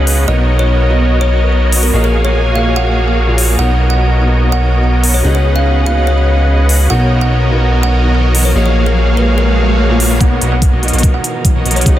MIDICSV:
0, 0, Header, 1, 9, 480
1, 0, Start_track
1, 0, Tempo, 413793
1, 322, Time_signature, 4, 2, 24, 8
1, 13911, End_track
2, 0, Start_track
2, 0, Title_t, "Kalimba"
2, 0, Program_c, 0, 108
2, 0, Note_on_c, 0, 73, 93
2, 230, Note_off_c, 0, 73, 0
2, 324, Note_on_c, 0, 75, 91
2, 545, Note_off_c, 0, 75, 0
2, 687, Note_on_c, 0, 73, 88
2, 907, Note_off_c, 0, 73, 0
2, 1404, Note_on_c, 0, 73, 92
2, 1625, Note_off_c, 0, 73, 0
2, 2123, Note_on_c, 0, 70, 83
2, 2269, Note_off_c, 0, 70, 0
2, 2366, Note_on_c, 0, 70, 85
2, 2511, Note_off_c, 0, 70, 0
2, 2605, Note_on_c, 0, 73, 87
2, 2826, Note_off_c, 0, 73, 0
2, 2963, Note_on_c, 0, 77, 81
2, 3113, Note_off_c, 0, 77, 0
2, 3204, Note_on_c, 0, 78, 91
2, 4070, Note_off_c, 0, 78, 0
2, 4163, Note_on_c, 0, 78, 92
2, 4385, Note_off_c, 0, 78, 0
2, 4525, Note_on_c, 0, 78, 85
2, 4746, Note_off_c, 0, 78, 0
2, 5246, Note_on_c, 0, 78, 92
2, 5467, Note_off_c, 0, 78, 0
2, 5964, Note_on_c, 0, 73, 79
2, 6110, Note_off_c, 0, 73, 0
2, 6203, Note_on_c, 0, 73, 84
2, 6349, Note_off_c, 0, 73, 0
2, 6445, Note_on_c, 0, 77, 92
2, 6666, Note_off_c, 0, 77, 0
2, 6802, Note_on_c, 0, 77, 90
2, 6953, Note_off_c, 0, 77, 0
2, 7043, Note_on_c, 0, 73, 92
2, 7909, Note_off_c, 0, 73, 0
2, 8004, Note_on_c, 0, 78, 94
2, 8225, Note_off_c, 0, 78, 0
2, 8368, Note_on_c, 0, 78, 85
2, 8588, Note_off_c, 0, 78, 0
2, 9085, Note_on_c, 0, 78, 96
2, 9306, Note_off_c, 0, 78, 0
2, 9802, Note_on_c, 0, 73, 78
2, 9949, Note_off_c, 0, 73, 0
2, 10041, Note_on_c, 0, 73, 86
2, 10188, Note_off_c, 0, 73, 0
2, 10282, Note_on_c, 0, 70, 85
2, 10505, Note_off_c, 0, 70, 0
2, 10640, Note_on_c, 0, 71, 88
2, 10791, Note_off_c, 0, 71, 0
2, 10879, Note_on_c, 0, 70, 93
2, 11747, Note_off_c, 0, 70, 0
2, 11839, Note_on_c, 0, 78, 93
2, 12062, Note_off_c, 0, 78, 0
2, 12203, Note_on_c, 0, 78, 90
2, 12425, Note_off_c, 0, 78, 0
2, 12923, Note_on_c, 0, 78, 94
2, 13145, Note_off_c, 0, 78, 0
2, 13639, Note_on_c, 0, 73, 81
2, 13787, Note_off_c, 0, 73, 0
2, 13911, End_track
3, 0, Start_track
3, 0, Title_t, "Supersaw synth"
3, 0, Program_c, 1, 81
3, 0, Note_on_c, 1, 61, 74
3, 0, Note_on_c, 1, 68, 73
3, 0, Note_on_c, 1, 71, 74
3, 0, Note_on_c, 1, 75, 70
3, 0, Note_on_c, 1, 78, 86
3, 293, Note_off_c, 1, 61, 0
3, 293, Note_off_c, 1, 75, 0
3, 293, Note_off_c, 1, 78, 0
3, 294, Note_off_c, 1, 68, 0
3, 294, Note_off_c, 1, 71, 0
3, 321, Note_on_c, 1, 59, 80
3, 322, Note_on_c, 1, 66, 71
3, 322, Note_on_c, 1, 70, 73
3, 322, Note_on_c, 1, 73, 72
3, 322, Note_on_c, 1, 75, 91
3, 2214, Note_off_c, 1, 59, 0
3, 2214, Note_off_c, 1, 66, 0
3, 2214, Note_off_c, 1, 70, 0
3, 2214, Note_off_c, 1, 73, 0
3, 2214, Note_off_c, 1, 75, 0
3, 2241, Note_on_c, 1, 58, 81
3, 2242, Note_on_c, 1, 66, 71
3, 2242, Note_on_c, 1, 68, 74
3, 2242, Note_on_c, 1, 73, 70
3, 2243, Note_on_c, 1, 77, 86
3, 4134, Note_off_c, 1, 58, 0
3, 4134, Note_off_c, 1, 66, 0
3, 4134, Note_off_c, 1, 68, 0
3, 4134, Note_off_c, 1, 73, 0
3, 4135, Note_off_c, 1, 77, 0
3, 4161, Note_on_c, 1, 59, 77
3, 4161, Note_on_c, 1, 66, 72
3, 4161, Note_on_c, 1, 73, 72
3, 4161, Note_on_c, 1, 75, 87
3, 4162, Note_on_c, 1, 70, 74
3, 6054, Note_off_c, 1, 59, 0
3, 6054, Note_off_c, 1, 66, 0
3, 6054, Note_off_c, 1, 70, 0
3, 6054, Note_off_c, 1, 73, 0
3, 6054, Note_off_c, 1, 75, 0
3, 6081, Note_on_c, 1, 68, 75
3, 6081, Note_on_c, 1, 71, 71
3, 6081, Note_on_c, 1, 75, 71
3, 6081, Note_on_c, 1, 78, 87
3, 6082, Note_on_c, 1, 61, 75
3, 7974, Note_off_c, 1, 61, 0
3, 7974, Note_off_c, 1, 68, 0
3, 7974, Note_off_c, 1, 71, 0
3, 7974, Note_off_c, 1, 75, 0
3, 7974, Note_off_c, 1, 78, 0
3, 8001, Note_on_c, 1, 70, 71
3, 8001, Note_on_c, 1, 73, 72
3, 8001, Note_on_c, 1, 75, 87
3, 8002, Note_on_c, 1, 59, 81
3, 8002, Note_on_c, 1, 66, 73
3, 9894, Note_off_c, 1, 59, 0
3, 9894, Note_off_c, 1, 66, 0
3, 9894, Note_off_c, 1, 70, 0
3, 9894, Note_off_c, 1, 73, 0
3, 9894, Note_off_c, 1, 75, 0
3, 9923, Note_on_c, 1, 66, 75
3, 9923, Note_on_c, 1, 73, 73
3, 9924, Note_on_c, 1, 58, 77
3, 9924, Note_on_c, 1, 68, 75
3, 9924, Note_on_c, 1, 77, 87
3, 11815, Note_off_c, 1, 58, 0
3, 11815, Note_off_c, 1, 66, 0
3, 11815, Note_off_c, 1, 68, 0
3, 11815, Note_off_c, 1, 73, 0
3, 11815, Note_off_c, 1, 77, 0
3, 11839, Note_on_c, 1, 59, 92
3, 11839, Note_on_c, 1, 66, 87
3, 11839, Note_on_c, 1, 73, 87
3, 11839, Note_on_c, 1, 75, 104
3, 11840, Note_on_c, 1, 70, 87
3, 12053, Note_off_c, 1, 59, 0
3, 12053, Note_off_c, 1, 66, 0
3, 12053, Note_off_c, 1, 70, 0
3, 12053, Note_off_c, 1, 73, 0
3, 12053, Note_off_c, 1, 75, 0
3, 12079, Note_on_c, 1, 59, 85
3, 12079, Note_on_c, 1, 66, 75
3, 12079, Note_on_c, 1, 73, 80
3, 12080, Note_on_c, 1, 70, 77
3, 12080, Note_on_c, 1, 75, 93
3, 12236, Note_off_c, 1, 59, 0
3, 12236, Note_off_c, 1, 66, 0
3, 12236, Note_off_c, 1, 70, 0
3, 12236, Note_off_c, 1, 73, 0
3, 12236, Note_off_c, 1, 75, 0
3, 12444, Note_on_c, 1, 66, 83
3, 12444, Note_on_c, 1, 70, 82
3, 12444, Note_on_c, 1, 75, 104
3, 12445, Note_on_c, 1, 73, 86
3, 12446, Note_on_c, 1, 59, 96
3, 12655, Note_off_c, 1, 66, 0
3, 12655, Note_off_c, 1, 70, 0
3, 12655, Note_off_c, 1, 75, 0
3, 12656, Note_off_c, 1, 59, 0
3, 12656, Note_off_c, 1, 73, 0
3, 12684, Note_on_c, 1, 66, 73
3, 12684, Note_on_c, 1, 70, 71
3, 12685, Note_on_c, 1, 73, 77
3, 12685, Note_on_c, 1, 75, 91
3, 12686, Note_on_c, 1, 59, 80
3, 13014, Note_off_c, 1, 59, 0
3, 13014, Note_off_c, 1, 66, 0
3, 13014, Note_off_c, 1, 70, 0
3, 13014, Note_off_c, 1, 73, 0
3, 13014, Note_off_c, 1, 75, 0
3, 13403, Note_on_c, 1, 59, 99
3, 13403, Note_on_c, 1, 66, 94
3, 13403, Note_on_c, 1, 70, 91
3, 13403, Note_on_c, 1, 73, 93
3, 13404, Note_on_c, 1, 75, 113
3, 13493, Note_off_c, 1, 59, 0
3, 13493, Note_off_c, 1, 66, 0
3, 13493, Note_off_c, 1, 70, 0
3, 13493, Note_off_c, 1, 73, 0
3, 13493, Note_off_c, 1, 75, 0
3, 13519, Note_on_c, 1, 59, 97
3, 13519, Note_on_c, 1, 66, 87
3, 13519, Note_on_c, 1, 70, 90
3, 13519, Note_on_c, 1, 75, 108
3, 13520, Note_on_c, 1, 73, 86
3, 13726, Note_off_c, 1, 59, 0
3, 13726, Note_off_c, 1, 66, 0
3, 13726, Note_off_c, 1, 70, 0
3, 13726, Note_off_c, 1, 73, 0
3, 13726, Note_off_c, 1, 75, 0
3, 13761, Note_on_c, 1, 68, 88
3, 13761, Note_on_c, 1, 75, 87
3, 13762, Note_on_c, 1, 61, 98
3, 13762, Note_on_c, 1, 71, 90
3, 13762, Note_on_c, 1, 78, 105
3, 13911, Note_off_c, 1, 61, 0
3, 13911, Note_off_c, 1, 68, 0
3, 13911, Note_off_c, 1, 71, 0
3, 13911, Note_off_c, 1, 75, 0
3, 13911, Note_off_c, 1, 78, 0
3, 13911, End_track
4, 0, Start_track
4, 0, Title_t, "Felt piano"
4, 0, Program_c, 2, 0
4, 0, Control_c, 2, 64, 127
4, 0, Note_on_c, 2, 49, 76
4, 0, Note_on_c, 2, 59, 68
4, 0, Note_on_c, 2, 63, 68
4, 0, Note_on_c, 2, 66, 70
4, 0, Note_on_c, 2, 73, 87
4, 0, Note_on_c, 2, 75, 100
4, 282, Note_off_c, 2, 49, 0
4, 288, Note_off_c, 2, 59, 0
4, 293, Note_off_c, 2, 63, 0
4, 298, Note_on_c, 2, 47, 95
4, 300, Note_off_c, 2, 66, 0
4, 306, Note_off_c, 2, 73, 0
4, 309, Note_on_c, 2, 59, 85
4, 321, Note_on_c, 2, 63, 82
4, 333, Note_on_c, 2, 70, 82
4, 340, Control_c, 2, 64, 0
4, 344, Note_on_c, 2, 73, 98
4, 348, Note_off_c, 2, 75, 0
4, 551, Control_c, 2, 64, 127
4, 1002, Note_off_c, 2, 47, 0
4, 1008, Note_off_c, 2, 59, 0
4, 1014, Note_off_c, 2, 63, 0
4, 1019, Note_on_c, 2, 47, 75
4, 1020, Note_off_c, 2, 70, 0
4, 1025, Note_off_c, 2, 73, 0
4, 1030, Note_on_c, 2, 59, 67
4, 1042, Note_on_c, 2, 63, 69
4, 1053, Note_on_c, 2, 70, 69
4, 1065, Note_on_c, 2, 75, 86
4, 2203, Note_off_c, 2, 47, 0
4, 2208, Note_off_c, 2, 59, 0
4, 2214, Note_off_c, 2, 63, 0
4, 2219, Note_on_c, 2, 46, 89
4, 2220, Note_off_c, 2, 70, 0
4, 2226, Note_off_c, 2, 75, 0
4, 2231, Note_on_c, 2, 58, 85
4, 2242, Note_on_c, 2, 77, 83
4, 2254, Note_on_c, 2, 68, 83
4, 2257, Control_c, 2, 64, 0
4, 2266, Note_on_c, 2, 75, 97
4, 2439, Control_c, 2, 64, 127
4, 2920, Note_off_c, 2, 46, 0
4, 2929, Note_off_c, 2, 58, 0
4, 2934, Note_off_c, 2, 77, 0
4, 2937, Note_on_c, 2, 46, 74
4, 2940, Note_off_c, 2, 68, 0
4, 2946, Note_off_c, 2, 75, 0
4, 2950, Note_on_c, 2, 58, 71
4, 2973, Note_on_c, 2, 68, 69
4, 2985, Note_on_c, 2, 73, 85
4, 3769, Note_off_c, 2, 46, 0
4, 3775, Note_off_c, 2, 58, 0
4, 3786, Note_off_c, 2, 68, 0
4, 3792, Note_off_c, 2, 73, 0
4, 3793, Note_on_c, 2, 46, 92
4, 3799, Note_on_c, 2, 58, 83
4, 3804, Note_on_c, 2, 65, 83
4, 3811, Note_on_c, 2, 68, 82
4, 3816, Note_on_c, 2, 73, 99
4, 4128, Note_off_c, 2, 46, 0
4, 4131, Note_off_c, 2, 58, 0
4, 4134, Note_off_c, 2, 65, 0
4, 4137, Note_off_c, 2, 68, 0
4, 4139, Note_off_c, 2, 73, 0
4, 4139, Note_on_c, 2, 47, 89
4, 4150, Note_on_c, 2, 59, 81
4, 4163, Note_on_c, 2, 63, 80
4, 4174, Note_on_c, 2, 70, 82
4, 4178, Control_c, 2, 64, 0
4, 4186, Note_on_c, 2, 73, 99
4, 4367, Control_c, 2, 64, 127
4, 4842, Note_off_c, 2, 47, 0
4, 4849, Note_off_c, 2, 59, 0
4, 4855, Note_off_c, 2, 63, 0
4, 4860, Note_off_c, 2, 70, 0
4, 4860, Note_on_c, 2, 47, 78
4, 4866, Note_off_c, 2, 73, 0
4, 4871, Note_on_c, 2, 59, 72
4, 4884, Note_on_c, 2, 63, 70
4, 4894, Note_on_c, 2, 70, 69
4, 4906, Note_on_c, 2, 75, 87
4, 6043, Note_off_c, 2, 47, 0
4, 6049, Note_off_c, 2, 59, 0
4, 6055, Note_off_c, 2, 63, 0
4, 6057, Note_on_c, 2, 49, 89
4, 6060, Note_off_c, 2, 70, 0
4, 6066, Note_off_c, 2, 75, 0
4, 6070, Note_on_c, 2, 59, 78
4, 6082, Note_on_c, 2, 63, 81
4, 6094, Note_on_c, 2, 66, 83
4, 6097, Control_c, 2, 64, 0
4, 6104, Note_on_c, 2, 75, 96
4, 6288, Control_c, 2, 64, 127
4, 6762, Note_off_c, 2, 49, 0
4, 6768, Note_off_c, 2, 59, 0
4, 6774, Note_off_c, 2, 63, 0
4, 6780, Note_off_c, 2, 66, 0
4, 6780, Note_on_c, 2, 49, 77
4, 6785, Note_off_c, 2, 75, 0
4, 6791, Note_on_c, 2, 59, 72
4, 6804, Note_on_c, 2, 63, 71
4, 6815, Note_on_c, 2, 66, 71
4, 6826, Note_on_c, 2, 73, 82
4, 7963, Note_off_c, 2, 49, 0
4, 7969, Note_off_c, 2, 59, 0
4, 7975, Note_off_c, 2, 63, 0
4, 7978, Note_on_c, 2, 47, 89
4, 7981, Note_off_c, 2, 66, 0
4, 7986, Note_off_c, 2, 73, 0
4, 7989, Note_on_c, 2, 59, 85
4, 8002, Note_on_c, 2, 63, 86
4, 8013, Note_on_c, 2, 70, 82
4, 8017, Control_c, 2, 64, 0
4, 8024, Note_on_c, 2, 73, 99
4, 8230, Control_c, 2, 64, 127
4, 8680, Note_off_c, 2, 47, 0
4, 8688, Note_off_c, 2, 59, 0
4, 8694, Note_off_c, 2, 63, 0
4, 8697, Note_on_c, 2, 47, 76
4, 8700, Note_off_c, 2, 70, 0
4, 8705, Note_off_c, 2, 73, 0
4, 8709, Note_on_c, 2, 59, 74
4, 8720, Note_on_c, 2, 63, 70
4, 8731, Note_on_c, 2, 70, 69
4, 8745, Note_on_c, 2, 75, 84
4, 9882, Note_off_c, 2, 47, 0
4, 9888, Note_off_c, 2, 59, 0
4, 9893, Note_off_c, 2, 63, 0
4, 9898, Note_on_c, 2, 46, 95
4, 9899, Note_off_c, 2, 70, 0
4, 9906, Note_off_c, 2, 75, 0
4, 9910, Note_on_c, 2, 58, 84
4, 9922, Note_on_c, 2, 77, 80
4, 9933, Note_on_c, 2, 68, 81
4, 9936, Control_c, 2, 64, 0
4, 9945, Note_on_c, 2, 75, 100
4, 10117, Control_c, 2, 64, 127
4, 10601, Note_off_c, 2, 46, 0
4, 10608, Note_off_c, 2, 58, 0
4, 10614, Note_off_c, 2, 77, 0
4, 10618, Note_on_c, 2, 46, 73
4, 10620, Note_off_c, 2, 68, 0
4, 10626, Note_off_c, 2, 75, 0
4, 10630, Note_on_c, 2, 58, 72
4, 10640, Note_on_c, 2, 77, 71
4, 10652, Note_on_c, 2, 68, 74
4, 10663, Note_on_c, 2, 73, 90
4, 11449, Note_off_c, 2, 46, 0
4, 11455, Note_off_c, 2, 58, 0
4, 11460, Note_off_c, 2, 77, 0
4, 11466, Note_off_c, 2, 68, 0
4, 11472, Note_off_c, 2, 73, 0
4, 11474, Note_on_c, 2, 46, 95
4, 11480, Note_on_c, 2, 58, 87
4, 11486, Note_on_c, 2, 65, 82
4, 11492, Note_on_c, 2, 68, 86
4, 11497, Note_on_c, 2, 73, 104
4, 11809, Note_off_c, 2, 46, 0
4, 11811, Note_off_c, 2, 58, 0
4, 11815, Note_off_c, 2, 65, 0
4, 11816, Note_on_c, 2, 47, 93
4, 11817, Note_off_c, 2, 68, 0
4, 11820, Note_off_c, 2, 73, 0
4, 11828, Note_on_c, 2, 59, 83
4, 11840, Note_on_c, 2, 63, 83
4, 11851, Note_on_c, 2, 70, 85
4, 11859, Control_c, 2, 64, 0
4, 11863, Note_on_c, 2, 73, 99
4, 12079, Control_c, 2, 64, 127
4, 12521, Note_off_c, 2, 47, 0
4, 12528, Note_off_c, 2, 59, 0
4, 12533, Note_off_c, 2, 63, 0
4, 12538, Note_on_c, 2, 47, 78
4, 12539, Note_off_c, 2, 70, 0
4, 12545, Note_off_c, 2, 73, 0
4, 12548, Note_on_c, 2, 59, 70
4, 12561, Note_on_c, 2, 63, 68
4, 12572, Note_on_c, 2, 70, 71
4, 12583, Note_on_c, 2, 75, 89
4, 13722, Note_off_c, 2, 47, 0
4, 13727, Note_off_c, 2, 59, 0
4, 13734, Note_off_c, 2, 63, 0
4, 13737, Note_on_c, 2, 49, 91
4, 13739, Note_off_c, 2, 70, 0
4, 13745, Note_off_c, 2, 75, 0
4, 13749, Note_on_c, 2, 59, 83
4, 13760, Note_on_c, 2, 63, 83
4, 13773, Note_on_c, 2, 66, 84
4, 13776, Control_c, 2, 64, 0
4, 13783, Note_on_c, 2, 75, 98
4, 13911, Note_off_c, 2, 49, 0
4, 13911, Note_off_c, 2, 59, 0
4, 13911, Note_off_c, 2, 63, 0
4, 13911, Note_off_c, 2, 66, 0
4, 13911, Note_off_c, 2, 75, 0
4, 13911, End_track
5, 0, Start_track
5, 0, Title_t, "String section"
5, 0, Program_c, 3, 48
5, 0, Note_on_c, 3, 49, 76
5, 0, Note_on_c, 3, 59, 70
5, 0, Note_on_c, 3, 63, 83
5, 0, Note_on_c, 3, 66, 86
5, 283, Note_off_c, 3, 59, 0
5, 302, Note_off_c, 3, 49, 0
5, 303, Note_off_c, 3, 66, 0
5, 321, Note_on_c, 3, 59, 72
5, 321, Note_on_c, 3, 70, 79
5, 2196, Note_off_c, 3, 63, 0
5, 2223, Note_off_c, 3, 59, 0
5, 2238, Note_on_c, 3, 54, 82
5, 2238, Note_on_c, 3, 80, 86
5, 4141, Note_off_c, 3, 54, 0
5, 4141, Note_off_c, 3, 80, 0
5, 4159, Note_on_c, 3, 59, 73
5, 4159, Note_on_c, 3, 63, 88
5, 6035, Note_off_c, 3, 70, 0
5, 6061, Note_off_c, 3, 63, 0
5, 6082, Note_on_c, 3, 63, 74
5, 6082, Note_on_c, 3, 66, 87
5, 6083, Note_on_c, 3, 49, 78
5, 7983, Note_off_c, 3, 49, 0
5, 7983, Note_off_c, 3, 63, 0
5, 7983, Note_off_c, 3, 66, 0
5, 8003, Note_on_c, 3, 63, 89
5, 8004, Note_on_c, 3, 70, 82
5, 9874, Note_off_c, 3, 59, 0
5, 9904, Note_off_c, 3, 63, 0
5, 9920, Note_on_c, 3, 54, 79
5, 9921, Note_on_c, 3, 77, 89
5, 11805, Note_off_c, 3, 70, 0
5, 11822, Note_off_c, 3, 54, 0
5, 11823, Note_off_c, 3, 77, 0
5, 11842, Note_on_c, 3, 59, 73
5, 11842, Note_on_c, 3, 63, 88
5, 11842, Note_on_c, 3, 70, 77
5, 13743, Note_off_c, 3, 70, 0
5, 13757, Note_on_c, 3, 49, 79
5, 13757, Note_on_c, 3, 66, 92
5, 13911, Note_off_c, 3, 49, 0
5, 13911, Note_off_c, 3, 59, 0
5, 13911, Note_off_c, 3, 63, 0
5, 13911, Note_off_c, 3, 66, 0
5, 13911, End_track
6, 0, Start_track
6, 0, Title_t, "Analog synth bass"
6, 0, Program_c, 4, 38
6, 0, Note_on_c, 4, 37, 86
6, 299, Note_off_c, 4, 37, 0
6, 321, Note_on_c, 4, 35, 86
6, 2219, Note_off_c, 4, 35, 0
6, 2241, Note_on_c, 4, 34, 87
6, 4138, Note_off_c, 4, 34, 0
6, 4161, Note_on_c, 4, 35, 87
6, 6059, Note_off_c, 4, 35, 0
6, 6082, Note_on_c, 4, 37, 86
6, 7979, Note_off_c, 4, 37, 0
6, 8004, Note_on_c, 4, 35, 84
6, 9900, Note_off_c, 4, 35, 0
6, 9922, Note_on_c, 4, 34, 89
6, 11819, Note_off_c, 4, 34, 0
6, 11838, Note_on_c, 4, 35, 96
6, 12057, Note_off_c, 4, 35, 0
6, 12079, Note_on_c, 4, 35, 96
6, 12419, Note_off_c, 4, 35, 0
6, 12442, Note_on_c, 4, 35, 99
6, 12659, Note_off_c, 4, 35, 0
6, 12682, Note_on_c, 4, 35, 94
6, 12989, Note_off_c, 4, 35, 0
6, 13401, Note_on_c, 4, 35, 98
6, 13497, Note_off_c, 4, 35, 0
6, 13517, Note_on_c, 4, 35, 106
6, 13737, Note_off_c, 4, 35, 0
6, 13758, Note_on_c, 4, 37, 100
6, 13911, Note_off_c, 4, 37, 0
6, 13911, End_track
7, 0, Start_track
7, 0, Title_t, "Downlifter"
7, 0, Program_c, 5, 103
7, 0, Note_on_c, 5, 60, 70
7, 322, Note_off_c, 5, 60, 0
7, 13911, End_track
8, 0, Start_track
8, 0, Title_t, "Riser"
8, 0, Program_c, 6, 103
8, 8002, Note_on_c, 6, 60, 73
8, 11841, Note_off_c, 6, 60, 0
8, 11841, Note_on_c, 6, 60, 77
8, 13911, Note_off_c, 6, 60, 0
8, 13911, End_track
9, 0, Start_track
9, 0, Title_t, "Drums"
9, 83, Note_on_c, 9, 46, 91
9, 199, Note_off_c, 9, 46, 0
9, 2001, Note_on_c, 9, 46, 88
9, 2117, Note_off_c, 9, 46, 0
9, 3922, Note_on_c, 9, 46, 81
9, 4038, Note_off_c, 9, 46, 0
9, 5842, Note_on_c, 9, 46, 83
9, 5958, Note_off_c, 9, 46, 0
9, 7763, Note_on_c, 9, 46, 84
9, 7879, Note_off_c, 9, 46, 0
9, 9683, Note_on_c, 9, 46, 91
9, 9799, Note_off_c, 9, 46, 0
9, 11601, Note_on_c, 9, 46, 90
9, 11717, Note_off_c, 9, 46, 0
9, 11839, Note_on_c, 9, 36, 99
9, 11841, Note_on_c, 9, 42, 78
9, 11955, Note_off_c, 9, 36, 0
9, 11957, Note_off_c, 9, 42, 0
9, 12082, Note_on_c, 9, 42, 70
9, 12198, Note_off_c, 9, 42, 0
9, 12318, Note_on_c, 9, 36, 93
9, 12321, Note_on_c, 9, 42, 81
9, 12434, Note_off_c, 9, 36, 0
9, 12437, Note_off_c, 9, 42, 0
9, 12562, Note_on_c, 9, 42, 50
9, 12623, Note_off_c, 9, 42, 0
9, 12623, Note_on_c, 9, 42, 67
9, 12685, Note_off_c, 9, 42, 0
9, 12685, Note_on_c, 9, 42, 50
9, 12743, Note_off_c, 9, 42, 0
9, 12743, Note_on_c, 9, 42, 65
9, 12798, Note_on_c, 9, 36, 95
9, 12800, Note_off_c, 9, 42, 0
9, 12800, Note_on_c, 9, 42, 83
9, 12914, Note_off_c, 9, 36, 0
9, 12916, Note_off_c, 9, 42, 0
9, 13040, Note_on_c, 9, 42, 67
9, 13156, Note_off_c, 9, 42, 0
9, 13278, Note_on_c, 9, 36, 91
9, 13281, Note_on_c, 9, 42, 79
9, 13394, Note_off_c, 9, 36, 0
9, 13397, Note_off_c, 9, 42, 0
9, 13520, Note_on_c, 9, 42, 50
9, 13582, Note_off_c, 9, 42, 0
9, 13582, Note_on_c, 9, 42, 66
9, 13646, Note_off_c, 9, 42, 0
9, 13646, Note_on_c, 9, 42, 50
9, 13704, Note_off_c, 9, 42, 0
9, 13704, Note_on_c, 9, 42, 65
9, 13758, Note_on_c, 9, 36, 95
9, 13761, Note_off_c, 9, 42, 0
9, 13761, Note_on_c, 9, 42, 79
9, 13874, Note_off_c, 9, 36, 0
9, 13877, Note_off_c, 9, 42, 0
9, 13911, End_track
0, 0, End_of_file